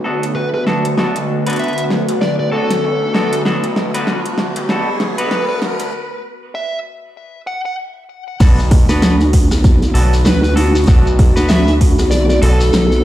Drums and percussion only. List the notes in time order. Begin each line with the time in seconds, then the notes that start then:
0.23 closed hi-hat
0.54 cross-stick
0.67 snare
0.85 closed hi-hat
0.98 snare
1.16 closed hi-hat
1.47 closed hi-hat
1.50 closed hi-hat
1.53 closed hi-hat
1.56 closed hi-hat
1.59 closed hi-hat
1.64 closed hi-hat
1.68 closed hi-hat
1.73 closed hi-hat
1.78 closed hi-hat
1.90 snare
2.09 closed hi-hat
2.22 snare
2.71 snare, closed hi-hat
3.15 snare
3.33 closed hi-hat
3.45 snare
3.64 closed hi-hat
3.76 snare
3.94 closed hi-hat
4.07 snare
4.26 closed hi-hat
4.38 snare
4.56 closed hi-hat
4.69 snare
5.00 snare
5.18 closed hi-hat
5.31 snare
5.62 snare
5.80 closed hi-hat
8.40 kick, open hi-hat, crash, shekere
8.59 open hi-hat, shekere
8.71 kick, cross-stick, open hi-hat
8.89 open hi-hat, shekere
9.02 snare, open hi-hat, shekere
9.20 open hi-hat, shekere
9.33 kick, open hi-hat
9.51 cross-stick, open hi-hat, shekere
9.64 kick, open hi-hat, shekere
9.82 open hi-hat, shekere
9.95 open hi-hat
10.13 open hi-hat, shekere
10.25 snare, open hi-hat, shekere
10.44 open hi-hat, shekere
10.57 open hi-hat
10.75 open hi-hat, shekere
10.77 open hi-hat
10.82 open hi-hat
10.84 open hi-hat
10.86 kick, open hi-hat, shekere
10.88 open hi-hat
11.07 shekere
11.19 kick, cross-stick, open hi-hat
11.37 open hi-hat, shekere
11.48 snare, open hi-hat, shekere
11.67 open hi-hat, shekere
11.81 kick, open hi-hat
11.99 cross-stick, open hi-hat, shekere
12.11 open hi-hat, shekere
12.30 open hi-hat, shekere
12.43 open hi-hat
12.60 open hi-hat, shekere
12.73 snare, open hi-hat, shekere
12.92 open hi-hat, shekere